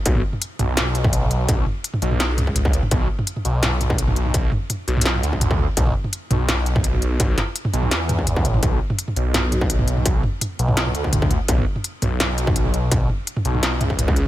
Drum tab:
HH |x-------x---x---x---x---x---x---|x-------x---x---x---x---x---x---|x-------x---x---x---x---x---x---|x-------x---x--x----x---x-------|
SD |----------------o---------------|----------------o---------------|----------------o---------------|----------------o---------------|
T2 |--o---o-----o---o-----o---o-----|o---o-----o---o-----o---o-----o-|o-----o---o-----o---o-----o---o-|----o---o-----o---o-----o---o---|
BD |o---------------------o---------|o---------------------o---o-----|o---------------------o---------|o---------------------o---o-----|

HH |x-------x---x---x---x---x---x---|x---x---x---x---x---x---x---x---|x-------x---x---x---x---x---x---|x-------x---x---x---x---x---x---|
SD |----------------o---------------|----o-----------o---------------|----------------o---------------|----------------o---------------|
T2 |--o---o-----o---o-----o---o-----|o---o-----o---o-----o---o-----o-|o-----o---o-----o---o-----o---o-|----o---o-----o---o-----o---o---|
BD |o---------------------o---------|o---------------------o---o-----|o---------------------o---------|o---------------------o---o-----|

HH |x-------x---x---x---x---x---x---|x-------x---x---x---x---x---x---|
SD |----------------o---------------|----------------o---------------|
T2 |--o---o-----o---o-----o---o-----|o---o-----o---o-----o---o-------|
BD |o---------------------o---------|o---------------------o---o-----|